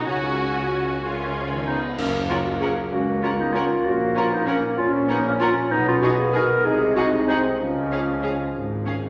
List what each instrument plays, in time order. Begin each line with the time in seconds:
0.06 double bass section C#2, tuba C#2, cello section C#3, viola section C#4 F#4, violin section F#4 G#5, marimba F#4
1.02 double bass section C#2, tuba C#2, cello section C#3, viola section C#4 F4, violin section G#5
1.52 cello section D#3
1.66 cello section C#3, french horn section B3, clarinet D#4
1.98 double bass section F#1, tuba F#1, cello section F#2, french horn section A#3, bassoon A#3, clarinet C#4, concert bass drum, crash
2.28 viola section C#4, french horn section C#4, clarinet F4, violin section A#4 F#5
2.46 french horn section D#4, clarinet F#4
2.60 viola section C#4, french horn section F4, clarinet G#4, violin section A#4 F#5
2.92 double bass section C#2, tuba C#2, cello section C#2, bassoon A#3, french horn section C#4, clarinet F#4
3.22 french horn section C#4, viola section C#4, clarinet F4, violin section A#4 F#5
3.38 french horn section B3, clarinet D#4
3.53 french horn section C#4, viola section C#4, clarinet F4, violin section A#4 F#5
3.83 double bass section A#1, tuba A#1, cello section A#2, french horn section C#4, clarinet F#4
4.16 viola section C#4, french horn section C#4, clarinet F4, violin section A#4 F#5
4.31 french horn section B3, clarinet D#4
4.46 french horn section A#3, viola section C#4, clarinet C#4, violin section A#4 F#5
4.78 double bass section A#1, tuba A#1, cello section A#2, french horn section C#4, bassoon C#4, clarinet F4
5.09 french horn section B3, viola section C#4, clarinet D#4, violin section A#4 F#5
5.24 french horn section A#3, clarinet C#4
5.39 french horn section C#4, viola section C#4, clarinet F4, violin section A#4 F#5
5.71 double bass section B1, tuba B1, cello section B2, french horn section B3, bassoon B3, clarinet D#4
5.87 french horn section C#4, clarinet F4
6.02 viola section D#4, french horn section D#4, clarinet F#4, violin section G#4 G#5
6.19 french horn section F4, clarinet G#4
6.34 viola section D#4, french horn section F#4, violin section G#4 G#5, clarinet A#4
6.64 double bass section C2, tuba C2, cello section C3, bassoon G#3, french horn section D#4, clarinet G#4
6.95 french horn section D#4, viola section D#4, clarinet F#4, violin section G#4 F#5
7.27 french horn section C4, clarinet D#4, viola section D#4, violin section G#4 F#5
7.59 double bass section C#2, tuba C#2, cello section C#3, bassoon F3, french horn section G#3, clarinet C#4
7.91 viola section C#4, violin section G#4 F5
8.23 viola section C#4, violin section G#4 F5
8.54 double bass section G#1, tuba G#1, cello section G#2
8.85 viola section C#4, violin section G#4 F5